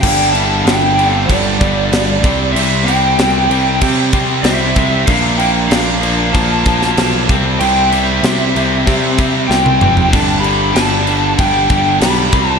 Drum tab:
CC |x-x-x-x-x-x-x-x-|x-x-x-x-x-x-x-x-|x-x-x-x-x-x-x-x-|x-x-x-x-x-x-----|
SD |----o-------o---|----o-------o---|----o------oo---|----o-------o---|
T1 |----------------|----------------|----------------|-------------o--|
T2 |----------------|----------------|----------------|--------------o-|
FT |----------------|----------------|----------------|---------------o|
BD |o-------o-o---o-|--------o-o---o-|o-------o-o---o-|--------o-o-----|

CC |x-x-x-x-x-x-x-x-|
SD |----o-------o---|
T1 |----------------|
T2 |----------------|
FT |----------------|
BD |o-------o-o---o-|